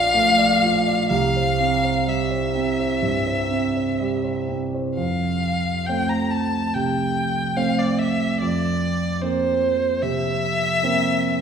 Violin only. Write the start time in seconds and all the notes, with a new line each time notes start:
Already playing: F5
1.09 F5
2.09 E5
4.97 F5
5.87 G5
6.10 A#5
6.30 A5
6.75 G5
7.57 F5
7.79 D5
7.99 E5
8.41 D5
9.22 C5
10.02 E5